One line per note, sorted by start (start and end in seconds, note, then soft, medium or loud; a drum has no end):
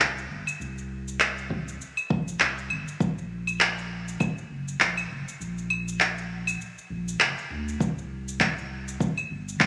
0.00 0.26 C2 loud
0.00 clap medium
0.00 cabasa medium
0.18 cabasa soft
0.30 0.44 G1 medium
0.47 cabasa medium
0.47 claves medium
0.60 1.77 C2 medium
0.60 cabasa soft
0.78 cabasa soft
1.08 cabasa medium
1.20 clap medium
1.20 cabasa medium
1.20 claves medium
1.38 cabasa soft
1.50 kick medium
1.68 cabasa medium
1.81 cabasa medium
1.97 cabasa soft
1.97 claves medium
2.10 2.36 A#1 medium
2.10 kick loud
2.28 cabasa medium
2.40 2.71 C2 medium
2.40 clap medium
2.40 cabasa medium
2.58 cabasa soft
2.70 2.84 G1 medium
2.70 claves medium
2.88 cabasa medium
3.00 4.17 A#1 loud
3.00 kick loud
3.00 cabasa soft
3.18 cabasa soft
3.47 cabasa medium
3.47 claves medium
3.61 clap loud
3.61 cabasa medium
3.78 cabasa soft
4.08 cabasa medium
4.20 kick loud
4.20 cabasa medium
4.20 claves medium
4.38 cabasa soft
4.50 4.76 F#1 medium
4.68 cabasa medium
4.80 5.06 A#1 loud
4.80 clap loud
4.80 cabasa medium
4.97 cabasa soft
4.97 claves medium
5.10 5.25 F#1 medium
5.28 cabasa medium
5.40 6.57 A#1 medium
5.40 cabasa soft
5.58 cabasa soft
5.70 claves medium
5.88 cabasa medium
6.00 clap loud
6.00 cabasa medium
6.18 cabasa soft
6.47 cabasa medium
6.47 claves medium
6.61 cabasa soft
6.78 cabasa soft
6.90 7.16 A#1 loud
7.08 cabasa medium
7.20 7.34 F#1 loud
7.20 clap loud
7.20 cabasa medium
7.20 claves medium
7.38 cabasa soft
7.51 7.76 D2 medium
7.68 cabasa medium
7.80 8.97 C2 medium
7.80 kick loud
7.80 cabasa medium
7.98 cabasa soft
8.28 cabasa medium
8.40 kick loud
8.40 clap loud
8.40 cabasa medium
8.40 claves medium
8.58 cabasa soft
8.88 cabasa medium
9.00 kick loud
9.00 cabasa medium
9.18 cabasa soft
9.18 claves medium
9.30 9.56 G1 medium
9.49 cabasa medium
9.60 9.66 C2 loud
9.60 kick loud
9.60 clap loud
9.60 cabasa medium